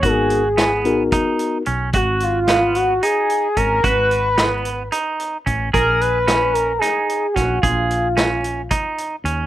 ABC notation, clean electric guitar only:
X:1
M:7/8
L:1/8
Q:1/4=111
K:G#dor
V:1 name="Clean electric guitar"
F2 B,2 D2 C | F2 B,2 D2 C | F2 B,2 D2 C | G2 C2 D2 C |
G2 C2 D2 C |]